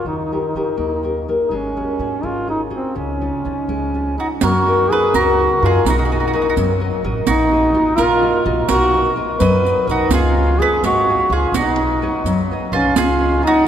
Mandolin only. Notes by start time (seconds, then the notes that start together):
4.20 F#4
4.43 A#4
4.92 B4
5.15 A#4
5.66 G#4
5.90 F#4
5.99 F#4
6.05 F#4
6.12 F#4
6.20 F#4
6.27 F#4
6.33 F#4
6.42 F#4
6.50 F#4
7.27 F#4
7.98 A#4
8.69 A#4
9.42 D#5
9.91 F#4
10.14 G#4
10.62 B4
10.84 C#5
11.32 G#4
11.55 F#4
12.73 F4
12.98 G#4
13.47 F#4